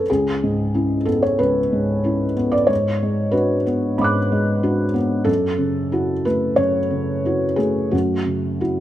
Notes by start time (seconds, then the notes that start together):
Already playing: A4 B4
0.10 C#2 G#4
0.43 G#2
0.74 C#4 E4
1.05 B3 A4
1.22 C#5
1.39 C#2 B4
1.73 G#2
2.04 C#4 E4
2.37 B3
2.52 D5
2.67 G#2 C#5
3.03 G#3
3.31 D4 F#4 B4
3.66 B3
3.98 G#2 B5 D6
4.04 F#6
4.32 G#3
4.63 D4 F#4
4.94 B3
5.24 F#2 A4
5.58 C#3
5.92 E4 F#4
6.25 A3 B4
6.56 F#2 C#5
6.91 C#3
7.25 E4 F#4
7.56 A3 G#4
7.91 F#2 F#4
8.26 C#3
8.61 E4 F#4